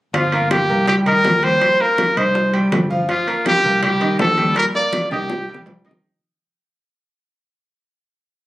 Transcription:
0.14 G1 F3 F4 F5, high bongo, high conga, high timbale
0.32 A#3 A#4 A#5, high conga, high timbale
0.51 G4, high bongo, high conga, high timbale, low timbale
0.69 C2 A#3 A#4 A#5, high conga
0.88 G3 G4 G5, high bongo, high conga, low conga, high timbale
1.06 D#3 D#4 A#4 D#5, high conga, low conga, high timbale
1.24 D#2, high bongo, low bongo, high conga, high timbale, low timbale
1.43 G3 G4 C5 G5, high conga, high timbale
1.61 high bongo, high conga, high timbale
1.80 A#3 A#4 A#5, high bongo, high conga
1.98 high bongo, high conga, high timbale, low timbale
2.17 C2 D#4 C5 D#5 D#6, high timbale
2.35 high bongo, high conga
2.53 G3 G4 G5, high bongo, high conga, high timbale
2.72 G1, high bongo, low bongo, high conga, high timbale, low timbale
2.90 F3 F4 F5, high bongo, high conga
3.08 F3 F4 F5, high bongo, high conga, high timbale
3.27 A#3 A#4 A#5, high conga, high timbale
3.46 G4, high bongo, high conga, high timbale, low timbale
3.64 C2 A#3 A#4 A#5, high conga
3.82 G3 G4 G5, high bongo, high conga, low conga, high timbale
4.00 D#3 D#4 D#5, high conga, high timbale
4.19 D#2 A4, high bongo, low bongo, high conga, high timbale, low timbale
4.37 G3 G4 G5, high conga, high timbale
4.56 A#4, high bongo, high conga, high timbale
4.74 A#3 A#4 D5 A#5, high bongo, high conga
4.93 high bongo, high conga, high timbale, low timbale
5.11 C2 D#4 G4 D#5 D#6, high timbale
5.29 high bongo, low timbale
5.48 G3 G4 G5, high conga
5.54 low bongo
5.66 C2, high conga, low timbale
5.85 D#3 D#4 D#5, high conga, low timbale
5.91 low bongo

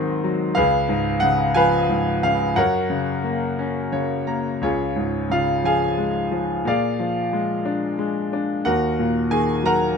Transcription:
Already playing: G#2 D#3 F#3 C4 D#5 F#5 C6
0.24 F#3
0.55 C#2 G#4 B4 F5
0.89 G#2
1.20 C#3 F#5
1.54 F3 B4 F5 G#5
1.89 G#2
2.23 C#3 F5
2.56 F#2 A#4 C#5 F#5
2.90 C#3
3.24 A#3
3.59 C#4
3.92 C#3 C#5
4.27 A#3 A#5
4.61 C#2 C#4 F4 G#4 C#5
4.96 G#2
5.30 C#3 F4 F5
5.64 F3 G#4 F5 G#5
5.98 G#3
6.32 F3
6.65 A#2 F4 G#4 D5 F5
7.00 F3
7.33 G#3
7.65 D4
7.99 G#3
8.33 D4
8.65 D#2 F#4 A#4 F#5
8.99 A#2
9.30 D#3 G#4 G#5
9.63 F#3 A#4 F#5 A#5

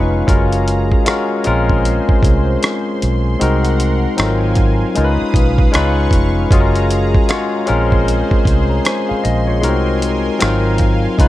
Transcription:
Already playing: F1 G#3 C#4 D#4 F4 B4 F5 C#6
0.27 F#1 G#3 C#4 F4 F#4 G#4 A#4 A#5, kick, closed hi-hat
0.53 closed hi-hat
0.68 closed hi-hat
0.92 kick
1.05 G#3 C#4 F4 F#4 A#4, cross-stick, closed hi-hat
1.44 A#1 G#3 C4 C#4 F4 A#4 C5 C6, closed hi-hat
1.70 kick
1.85 closed hi-hat
2.09 muted fingered electric bass stroke, kick
2.23 C2, kick, closed hi-hat
2.63 cross-stick, closed hi-hat
3.02 B1, closed hi-hat
3.39 C2 G#3 C4 D#4 F#4 A#4 F#5, closed hi-hat
3.65 closed hi-hat
3.80 closed hi-hat
4.16 G#1 F#3 C4 D#4 F4 A4 F5 G#5, cross-stick, closed hi-hat
4.26 A#4
4.55 kick, closed hi-hat
4.94 C#2 G#3 C#4 D#4 F4 A#4 B4 D#6, closed hi-hat
5.04 B4
5.34 B1, kick, closed hi-hat
5.58 kick
5.72 C#2 G#3 C#4 D#4 F4 B4 C#6, cross-stick, closed hi-hat
6.11 F1, kick, closed hi-hat
6.50 F#1 G#3 C#4 F4 F#4 G#4 A#5, kick, closed hi-hat
6.60 A#4
6.75 closed hi-hat
6.91 closed hi-hat
7.15 kick
7.28 G#3 C#4 F4 F#4 C#5, cross-stick, closed hi-hat
7.66 A#1 G#3 C4 C#4 F4 G#4 A#4 C5 C6, closed hi-hat
7.92 kick
8.08 closed hi-hat
8.31 muted fingered electric bass stroke, kick
8.45 C2, kick, closed hi-hat
8.70 C#5 A#5
8.85 C5 G#5, cross-stick, closed hi-hat
9.09 G#4 F5, muted fingered electric bass stroke
9.24 A#1 D#5, closed hi-hat
9.47 F4 C#5
9.61 C2 G#3 B3 D#4 F#4 A#4 G#5, closed hi-hat
9.69 C4
10.02 closed hi-hat
10.39 G#1 F#3 C4 D#4 F4 A#4 F5, cross-stick, closed hi-hat
10.78 kick, closed hi-hat
11.17 C#2 G#3 C#4 D#4 F4 B4 D#6, kick, closed hi-hat

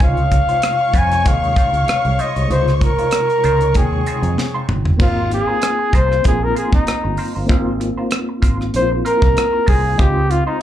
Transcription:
0.00 C#2 C3 G#3 D#4 F4 C5 C#5 F5 C#6, kick, closed hi-hat
0.17 closed hi-hat
0.32 muted clean electric guitar stroke, kick, closed hi-hat
0.49 D#4 F4 C5, closed hi-hat
0.62 muted clean electric guitar stroke, cross-stick, closed hi-hat
0.80 muted clean electric guitar stroke
0.94 F2 D#4 F4 C5, kick, closed hi-hat
0.98 G#5
1.11 muted clean electric guitar stroke, cross-stick, closed hi-hat
1.23 D#2 C3 G#3 D#4 F4 G#4 C5, kick, closed hi-hat
1.28 F5
1.42 muted clean electric guitar stroke, closed hi-hat
1.56 D#4 F4 C5, kick, closed hi-hat
1.73 C#2, muted clean electric guitar stroke, closed hi-hat
1.88 muted clean electric guitar stroke, muted fingered electric bass stroke, cross-stick, closed hi-hat
2.05 C2, muted clean electric guitar stroke, closed hi-hat
2.19 D#4 F4 C5 D#5, closed hi-hat
2.36 C2 D#4 F4 C5, closed hi-hat
2.48 C#2 C3 G#3 D#4 F4 C5, closed hi-hat
2.68 cross-stick, closed hi-hat
2.76 C5
2.81 A#4, muted clean electric guitar stroke, kick, closed hi-hat
2.98 D#4 F4 C5, muted fingered electric bass stroke, closed hi-hat
3.11 muted clean electric guitar stroke, cross-stick, closed hi-hat
3.30 muted clean electric guitar stroke, closed hi-hat
3.44 C#2 D#4 F4 C5, closed hi-hat
3.61 muted clean electric guitar stroke, closed hi-hat
3.73 D#2 C3 G#3 D#4 G5, muted clean electric guitar stroke, kick, closed hi-hat
3.77 G#4
3.93 muted clean electric guitar stroke
4.06 D#4 F4 C5, closed hi-hat
4.22 F2, muted clean electric guitar stroke, closed hi-hat
4.38 muted clean electric guitar stroke, snare
4.54 D#4 F4 C5
4.68 G1, muted clean electric guitar stroke, mid tom
4.85 muted clean electric guitar stroke, floor tom
4.97 G#1 A#3 C4 D#4 F4 A#4 C5, kick, crash
5.02 F4
5.31 G#4, muted clean electric guitar stroke, closed hi-hat
5.47 F4 A#4 C5
5.62 cross-stick, closed hi-hat
5.79 muted clean electric guitar stroke
5.93 C2 F4 A#4 C5, kick, closed hi-hat
6.10 muted clean electric guitar stroke, cross-stick
6.22 A#1 A#3 C4 D#4 F4 A#4 C5, kick, closed hi-hat
6.27 G#4
6.42 A#4, muted clean electric guitar stroke
6.55 F4 G#4 A#4 C5, closed hi-hat
6.72 G#1 D#4, muted clean electric guitar stroke, kick
6.87 muted clean electric guitar stroke, muted fingered electric bass stroke, cross-stick, closed hi-hat
7.04 G1, muted clean electric guitar stroke
7.17 F4 A#4 C5, open hi-hat
7.35 G1 F4 A#4 C5
7.46 G#1 A#3 C4 D#4 F4 A#4, kick, closed hi-hat
7.50 C5
7.80 muted clean electric guitar stroke, closed hi-hat
7.98 F4 A#4 C5
8.11 cross-stick, closed hi-hat
8.29 muted clean electric guitar stroke
8.42 G#1 F4 A#4 C5, kick, closed hi-hat
8.60 muted clean electric guitar stroke, cross-stick
8.72 A#1 A#3 C4 D#4 E4, muted clean electric guitar stroke, closed hi-hat
8.76 C5
8.82 F4
8.91 muted clean electric guitar stroke
9.05 F4 A#4 C5, closed hi-hat
9.22 C2, muted clean electric guitar stroke, kick
9.36 muted clean electric guitar stroke, cross-stick, closed hi-hat
9.53 muted clean electric guitar stroke
9.66 C2 F4 G#4 A#4 C5, kick, open hi-hat
9.84 muted clean electric guitar stroke
9.97 C#2 G#3 C4 D#4 F4 G4 C5, kick, closed hi-hat
10.30 F4, muted clean electric guitar stroke, closed hi-hat
10.47 D#4 F4 C5

